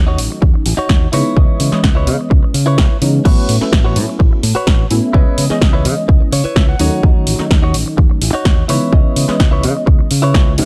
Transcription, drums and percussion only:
0.18 open hi-hat
0.42 kick
0.66 open hi-hat
0.89 kick, snare
1.13 open hi-hat
1.37 kick
1.60 open hi-hat
1.72 snare
1.84 kick, snare
2.07 open hi-hat
2.31 kick
2.54 open hi-hat
2.78 kick, snare
3.02 open hi-hat
3.25 kick, crash
3.49 open hi-hat
3.61 snare
3.73 kick, snare
3.96 open hi-hat
4.20 kick
4.43 open hi-hat
4.67 kick, snare
4.91 open hi-hat
5.14 kick
5.38 open hi-hat
5.50 snare
5.62 kick, snare
5.85 open hi-hat
6.09 kick
6.33 open hi-hat
6.56 kick, snare
6.79 open hi-hat
7.03 kick
7.27 open hi-hat
7.39 snare
7.51 kick, snare
7.74 open hi-hat
7.98 kick
8.22 open hi-hat
8.45 kick, snare
8.69 open hi-hat
8.93 kick
9.16 open hi-hat
9.29 snare
9.40 kick, snare
9.63 open hi-hat
9.87 kick
10.11 open hi-hat
10.34 kick, snare
10.58 open hi-hat

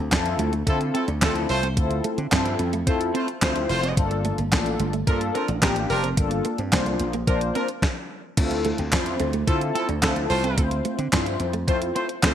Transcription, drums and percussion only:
0.12 kick, snare, clap, closed hi-hat
0.26 closed hi-hat
0.39 closed hi-hat
0.53 closed hi-hat
0.67 kick, closed hi-hat
0.81 closed hi-hat
0.95 closed hi-hat
1.08 closed hi-hat
1.22 kick, snare, clap, closed hi-hat
1.36 closed hi-hat
1.49 open hi-hat
1.63 closed hi-hat
1.77 kick, closed hi-hat
1.91 closed hi-hat
2.04 closed hi-hat
2.18 closed hi-hat
2.32 kick, snare, clap, closed hi-hat
2.46 closed hi-hat
2.59 closed hi-hat
2.73 closed hi-hat
2.87 kick, closed hi-hat
3.01 closed hi-hat
3.15 closed hi-hat
3.28 closed hi-hat
3.42 kick, snare, clap, closed hi-hat
3.56 closed hi-hat
3.69 open hi-hat
3.84 closed hi-hat
3.97 kick, closed hi-hat
4.11 closed hi-hat
4.25 closed hi-hat
4.38 closed hi-hat
4.52 kick, snare, clap, closed hi-hat
4.66 closed hi-hat
4.80 closed hi-hat
4.93 closed hi-hat
5.07 kick, closed hi-hat
5.21 closed hi-hat
5.35 closed hi-hat
5.48 closed hi-hat
5.62 kick, snare, clap, closed hi-hat
5.76 closed hi-hat
5.90 open hi-hat
6.04 closed hi-hat
6.17 kick, closed hi-hat
6.31 closed hi-hat
6.45 closed hi-hat
6.58 closed hi-hat
6.72 kick, snare, clap, closed hi-hat
6.86 closed hi-hat
7.00 closed hi-hat
7.13 closed hi-hat
7.27 kick, closed hi-hat
7.41 closed hi-hat
7.55 closed hi-hat
7.68 closed hi-hat
7.82 kick, snare
8.37 kick, closed hi-hat, crash
8.51 closed hi-hat
8.65 closed hi-hat
8.78 closed hi-hat
8.92 kick, snare, clap, closed hi-hat
9.06 closed hi-hat
9.20 closed hi-hat
9.33 closed hi-hat
9.47 kick, closed hi-hat
9.61 closed hi-hat
9.75 closed hi-hat
9.89 closed hi-hat
10.02 kick, snare, clap, closed hi-hat
10.16 closed hi-hat
10.30 open hi-hat
10.44 closed hi-hat
10.58 kick, closed hi-hat
10.71 closed hi-hat
10.85 closed hi-hat
10.99 closed hi-hat
11.13 kick, snare, clap, closed hi-hat
11.26 closed hi-hat
11.40 closed hi-hat
11.53 closed hi-hat
11.68 kick, closed hi-hat
11.82 closed hi-hat
11.96 closed hi-hat
12.09 closed hi-hat
12.23 kick, snare, clap, closed hi-hat

